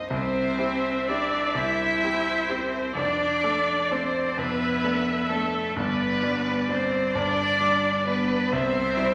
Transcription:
Already playing: grand piano C2 G2 C4 D#4
0.10 grand piano C2 C3, cello C4, violin C5, viola E5
0.58 grand piano C4 E4 G4
1.08 grand piano C4 E4 G4, cello D4, violin D5
1.55 grand piano C2 C3, cello E4, viola C5, violin E5
2.03 grand piano C4 E4 G4
2.49 grand piano C4 E4 G4, cello C4, violin C5
2.95 grand piano F1 F2, cello D4, violin D5, viola D5
3.43 grand piano A3 D4 A4
3.90 grand piano A3 D4 A4, cello C4, violin C5
4.37 grand piano F1 F2, cello B3, violin B4, viola E5
4.84 grand piano A3 D4 A4
5.29 grand piano A3 D4 A4, cello A3, violin A4
5.76 grand piano G1 G2, cello B3, violin B4, viola D5
6.22 grand piano G3 D4 D5
6.69 grand piano G3 D4 D5, cello C4, violin C5
7.14 grand piano G1 G2, cello D4, violin D5
7.61 grand piano G3 D4 D5
8.06 grand piano G3 D4 D5, cello B3, violin B4
8.52 grand piano C2 C3, cello C4, violin C5, viola E5
8.97 grand piano G3 E4 C5

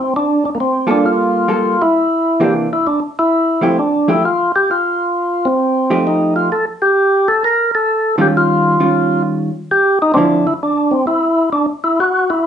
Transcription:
0.00 tonewheel organ C4
0.16 tonewheel organ D4
0.45 tonewheel organ D4
0.55 tonewheel organ A#3
0.60 tonewheel organ C4
0.87 hollow-body jazz guitar G3 A#3 F4 A4
0.91 tonewheel organ D4
1.06 tonewheel organ F4
1.48 hollow-body jazz guitar G3 A#3 F4 A4
1.82 tonewheel organ E4
2.40 hollow-body jazz guitar C3 E3 A#3 D4, tonewheel organ G4
2.73 tonewheel organ E4
2.87 tonewheel organ D4
3.19 tonewheel organ E4
3.61 hollow-body jazz guitar F3 A3 E4 G4, tonewheel organ C4
3.79 tonewheel organ D4
4.08 hollow-body jazz guitar F3 A3 E4 G4, tonewheel organ E4
4.25 tonewheel organ F4
4.56 tonewheel organ G4
4.71 tonewheel organ F4
5.45 tonewheel organ C4
5.90 hollow-body jazz guitar F3 A3 D#4 G4
6.07 tonewheel organ D#4
6.36 tonewheel organ F4
6.52 tonewheel organ A4
6.82 tonewheel organ G4
7.28 tonewheel organ A4
7.44 tonewheel organ A#4
7.75 tonewheel organ A4
8.18 hollow-body jazz guitar D#3 G3 C#4 F4, tonewheel organ G4
8.37 tonewheel organ F4
8.80 hollow-body jazz guitar D#3 G3 C#4 F4
9.71 tonewheel organ G4
10.02 tonewheel organ D#4
10.14 hollow-body jazz guitar D3 F3 C4 E4, tonewheel organ C4 D4
10.47 tonewheel organ E4
10.63 tonewheel organ D4
10.91 tonewheel organ C4
11.07 tonewheel organ E4
11.53 tonewheel organ D4
11.84 tonewheel organ E4
12.00 tonewheel organ F#4
12.30 tonewheel organ E4

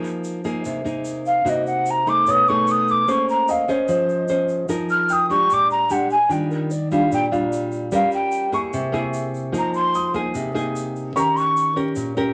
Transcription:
Already playing: nylon-string guitar F3 A#3 D#4 G#4, grand piano A#4
0.04 shaker
0.24 shaker
0.44 nylon-string guitar A#3 D#4 G#4, shaker
0.65 nylon-string guitar C3, shaker
0.84 nylon-string guitar A#3 D#4 G#4, shaker
1.05 shaker
1.26 flute F5, shaker
1.45 nylon-string guitar C3 A#3 D#4 F#4, shaker
1.49 flute D#5
1.66 flute F#5, shaker
1.86 shaker
1.90 flute A#5
2.06 nylon-string guitar A3 D#4 G#4, flute D6, shaker
2.27 nylon-string guitar B2, grand piano C#5, flute D#6, shaker
2.47 nylon-string guitar A3 D#4 G#4, flute C#6, shaker
2.67 flute D#6, shaker
2.88 flute D6, shaker
3.08 nylon-string guitar A#3 C#4 G#4 C5, flute C#6, shaker
3.29 flute A#5, shaker
3.48 grand piano D#5, flute F5, shaker
3.68 nylon-string guitar C#4 G#4 C5, flute C#5, shaker
3.88 nylon-string guitar F3, flute C5, shaker
4.09 shaker
4.28 nylon-string guitar C#4 G#4 C5, shaker
4.48 shaker
4.69 nylon-string guitar F3 D#4 G#4 A#4, shaker
4.89 flute F6, shaker
5.09 grand piano G5, flute D#6, shaker
5.30 nylon-string guitar G#3 D4 G4, flute C#6, shaker
5.50 nylon-string guitar A#2, flute D6, shaker
5.70 flute A#5, shaker
5.90 nylon-string guitar G#3 D4 G4, flute F#5, shaker
6.10 flute G#5, shaker
6.29 nylon-string guitar D#3 G3 D4 F4, flute G5, shaker
6.50 flute A#4, shaker
6.71 flute D5, shaker
6.91 nylon-string guitar G3 D4 F4, flute F5, shaker
7.12 nylon-string guitar A#2, flute G5, shaker
7.31 nylon-string guitar G3 D4 F4, grand piano F5, shaker
7.52 shaker
7.72 shaker
7.92 nylon-string guitar G3 C#4 F4 A#4, flute F5, shaker
8.11 flute G5, shaker
8.32 shaker
8.52 nylon-string guitar A#3 E4 G#4, grand piano C#6, shaker
8.73 nylon-string guitar C3, shaker
8.92 nylon-string guitar A#3 E4 G#4, shaker
9.13 shaker
9.34 shaker
9.52 nylon-string guitar F3 A#3 D#4 G#4, shaker
9.58 flute A#5
9.74 flute C6, shaker
9.95 grand piano D#6, shaker
10.14 nylon-string guitar A#3 D#4 G#4, shaker
10.35 nylon-string guitar C3, shaker
10.55 nylon-string guitar A#3 D#4 G#4, shaker
10.76 shaker
10.96 shaker
11.16 nylon-string guitar D#3 C#4 G4 A#4, flute A#5, grand piano C#6, shaker
11.37 flute C#6, shaker
11.57 shaker
11.76 nylon-string guitar C#4 G4 A#4, shaker
11.96 nylon-string guitar A#2, shaker
12.17 nylon-string guitar C#4 G4 A#4, shaker

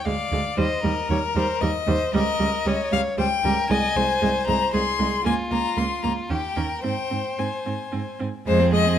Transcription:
0.06 cello D2, viola G#3, violin D5 F5
0.32 cello D2, viola G#3
0.57 cello D#2, viola G3, violin C5 D#5
0.83 cello D#2, viola G3, violin A#4
1.10 cello D#2, viola G3, violin C#5
1.36 cello D#2, viola G3, violin C5
1.62 cello D#2, viola G3, violin A#4 D#5
1.87 cello D#2, viola G3, violin C5
2.14 cello C#2, viola G3, violin A#4 D#5
2.40 cello C#2, viola G3
2.66 cello C#2, viola G3, violin C#5
2.92 cello C#2, viola G3, violin F5
3.18 cello C#2, viola G3, violin C5 G5
3.44 cello C#2, viola G3, violin A#4
3.70 cello C2, viola G#3, violin D#5 G#5
3.96 cello C2, viola G#3, violin C5
4.22 cello C2, viola G#3
4.47 cello C2, viola G#3, violin A#5
4.73 cello C2, viola G#3, violin G#4 C6
4.99 cello C2, viola G#3
5.25 cello C#2, viola A#3, violin F4 G#5
5.51 cello C#2, viola A#3, violin A#5
5.77 cello C#2, viola A#3, violin C6
6.03 cello C#2, viola A#3, violin A#5
6.30 cello D#2, viola C#4, violin G4 G5
6.56 cello D#2, viola C#4, violin A#4
6.84 cello G#2, viola C4, violin C5 G5
7.11 cello G#2, viola C4
7.39 cello G#2, viola C4, violin G#5
7.66 cello G#2, viola C4
7.92 cello G#2, viola C4
8.20 cello G#2, viola C4
8.47 cello F2, viola G#3, violin G#4 C5
8.60 viola C4
8.73 viola G#3, violin D#5
8.86 viola C4

